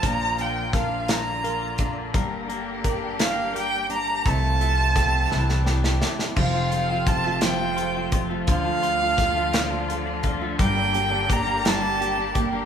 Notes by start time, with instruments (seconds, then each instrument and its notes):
Already playing: nylon-string guitar F3 F4 A4, string section F3 F4, clean electric guitar A3 C4 F4
0.03 upright bass A#1, nylon-string guitar A#2, string section D3 A#3, clean electric guitar F3, violin A#5, kick, closed hi-hat
0.38 clean electric guitar A#3, nylon-string guitar D4, violin G5, closed hi-hat
0.73 clean electric guitar D4, nylon-string guitar A#4, violin F5, kick, snare, closed hi-hat
1.08 clean electric guitar A#3, nylon-string guitar D4, violin A#5, snare, closed hi-hat
1.44 clean electric guitar F4, nylon-string guitar A#4, closed hi-hat
1.78 clean electric guitar D4, nylon-string guitar D4, kick, closed hi-hat
2.14 upright bass G1, nylon-string guitar G2, string section G3 G4, clean electric guitar A#3, kick, closed hi-hat
2.49 clean electric guitar A#3, nylon-string guitar D4, closed hi-hat
2.84 clean electric guitar D4, nylon-string guitar A#4, kick, closed hi-hat
3.19 clean electric guitar A#3, nylon-string guitar D4, violin F5, snare, closed hi-hat
3.54 clean electric guitar G4, nylon-string guitar A#4, violin G5, closed hi-hat
3.89 nylon-string guitar D4, clean electric guitar D4, violin A#5, closed hi-hat
4.25 upright bass C2, nylon-string guitar C3, string section C3 F3 A3 F4, clean electric guitar A3, violin A5, kick, closed hi-hat
4.61 clean electric guitar A3, nylon-string guitar F4, closed hi-hat
4.96 clean electric guitar C4, nylon-string guitar A4, kick, snare, closed hi-hat
5.31 upright bass C2, nylon-string guitar C3, string section E3 G3 D4, clean electric guitar E3, snare
5.49 snare
5.66 clean electric guitar G4, nylon-string guitar G4, snare
5.84 snare
6.00 clean electric guitar D4, nylon-string guitar E4, snare
6.19 snare
6.36 upright bass F1, string section C3 F3 A3 F4, clean electric guitar F3 F4, nylon-string guitar F3, violin F5, kick, crash
6.53 clean electric guitar C4, nylon-string guitar F4
6.71 clean electric guitar F4, nylon-string guitar A4, closed hi-hat
6.89 clean electric guitar C4, nylon-string guitar F4
7.06 nylon-string guitar C4, clean electric guitar F4, violin A5, kick, closed hi-hat
7.24 clean electric guitar A3, nylon-string guitar F4
7.41 clean electric guitar F3 F4, nylon-string guitar F3, violin G5, snare, closed hi-hat
7.59 clean electric guitar C4, nylon-string guitar F4
7.77 clean electric guitar F4, nylon-string guitar A4, closed hi-hat
7.94 clean electric guitar C4, nylon-string guitar F4
8.12 nylon-string guitar C4, clean electric guitar F4, kick, closed hi-hat
8.30 clean electric guitar A3, nylon-string guitar F4
8.47 upright bass D2, nylon-string guitar D3, string section D3 F4, clean electric guitar F3 F4, violin F5, kick, closed hi-hat
8.65 clean electric guitar D4, nylon-string guitar F4
8.83 clean electric guitar F4, nylon-string guitar A4, closed hi-hat
9.00 clean electric guitar D4, nylon-string guitar F4
9.17 nylon-string guitar D4, clean electric guitar F4, kick, snare, closed hi-hat
9.35 clean electric guitar A3, nylon-string guitar F4
9.53 nylon-string guitar D3, clean electric guitar F3 F4, snare, closed hi-hat
9.70 clean electric guitar D4, nylon-string guitar F4
9.88 clean electric guitar F4, nylon-string guitar A4, closed hi-hat
10.06 clean electric guitar D4, nylon-string guitar F4
10.23 nylon-string guitar D4, clean electric guitar F4, kick, closed hi-hat
10.41 clean electric guitar A3, nylon-string guitar F4
10.59 upright bass G1, nylon-string guitar G2, string section G3 A#3 G4, clean electric guitar A#3 G4, violin G5, kick, closed hi-hat
10.76 clean electric guitar D4, nylon-string guitar D4
10.93 clean electric guitar G4, nylon-string guitar G4, closed hi-hat
11.11 clean electric guitar D4, nylon-string guitar D4
11.29 nylon-string guitar A#3, clean electric guitar G4, violin A#5, kick, closed hi-hat
11.46 clean electric guitar A#3, nylon-string guitar D4
11.64 nylon-string guitar G2, clean electric guitar A#3 G4, violin A5, snare, closed hi-hat
11.82 clean electric guitar D4, nylon-string guitar D4
12.00 clean electric guitar G4, nylon-string guitar G4, closed hi-hat
12.18 nylon-string guitar D4, clean electric guitar D4
12.35 nylon-string guitar A#3, clean electric guitar G4, kick, closed hi-hat
12.52 clean electric guitar A#3, nylon-string guitar D4